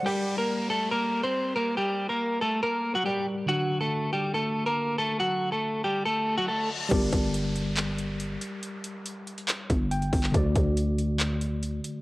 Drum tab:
CC |----------------|----------------|----------------|----------------|
HH |----------------|----------------|----------------|----------------|
CP |----------------|----------------|----------------|----------------|
BD |----------------|----------------|----------------|----------------|

CC |x---------------|----------------|----------------|
HH |x-x-x-x-x-x-x-x-|x-x-x-xxx-x-xxo-|x-x-x-x-x-x-x-x-|
CP |--------x-------|--------x------x|--------x-------|
BD |o-o-------------|----------o---o-|o-o-------------|